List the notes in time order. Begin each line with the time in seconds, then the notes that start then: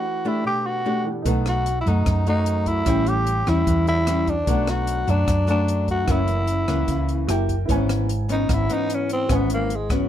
Already playing: E3 D4 F#4
0.25 A3 D4 E4 G4
0.44 B2 G4
0.66 F#4
0.85 A3 D4 G4
1.04 E3 D4 G4 A4 F#5
1.22 B1 B2 F#3 A3 D#4 A4 B4, kick, closed hi-hat
1.27 D#4 F#5
1.46 F#4, cross-stick, closed hi-hat
1.66 closed hi-hat
1.81 E4
1.86 F#2 F#3 A3 D#4, kick, closed hi-hat
2.06 F#2, kick, cross-stick, closed hi-hat
2.27 F#3 A3 D#4, closed hi-hat
2.46 closed hi-hat
2.66 E4, kick, closed hi-hat
2.83 A1 A2 G3 C#4 E4 A4, kick, cross-stick, closed hi-hat
2.87 E4 C#5 G5
3.07 G4, closed hi-hat
3.27 closed hi-hat
3.46 E2 G3 C#4 E4, kick, cross-stick, closed hi-hat
3.67 E2 E3, kick, closed hi-hat
3.85 E4 A4 C#5 G5, closed hi-hat
4.07 G3 C#4 E4, cross-stick, closed hi-hat
4.27 D4, kick, closed hi-hat
4.44 B1 B2 F#3 D4 A4, kick, closed hi-hat
4.48 A3 D4 B4 F#5
4.67 F#4, cross-stick, closed hi-hat
4.87 closed hi-hat
5.07 F#2 F#3 A3 D4, kick, closed hi-hat
5.27 F#2, kick, cross-stick, closed hi-hat
5.47 F#3 A3 D4, closed hi-hat
5.68 closed hi-hat
5.88 F#4, kick, closed hi-hat
6.04 F#1 F#2 E3 A#3 E4 A#4 C#5, kick, cross-stick, closed hi-hat
6.09 C#4 E4 F#5
6.28 closed hi-hat
6.47 closed hi-hat
6.68 C#2 E3 A#3 C#4, kick, cross-stick, closed hi-hat
6.88 C#2 C#3, kick, closed hi-hat
7.09 closed hi-hat
7.27 F#1 A#3 E4 F#4 G4 A#4 E5 G5, cross-stick, closed hi-hat
7.49 kick, closed hi-hat
7.66 G#1 G#2 E3 E4 B4 C#5, kick, closed hi-hat
7.70 B3 C#4 G#5
7.89 cross-stick, closed hi-hat
8.09 closed hi-hat
8.29 E3 B3 C#4 D#4, closed hi-hat
8.49 G#1 G#2, kick, cross-stick, closed hi-hat
8.54 E4
8.69 E3 B3 C#4 D#4, closed hi-hat
8.90 closed hi-hat
8.95 C#4
9.09 C4, closed hi-hat
9.26 G#1 E3 F#4 B4, kick, cross-stick, closed hi-hat
9.30 G#2 B3 C#4 E5 G#5
9.36 B3
9.50 A#3, closed hi-hat
9.70 closed hi-hat
9.76 G#3
9.89 E3 F#3 B3 C#4, kick, cross-stick, closed hi-hat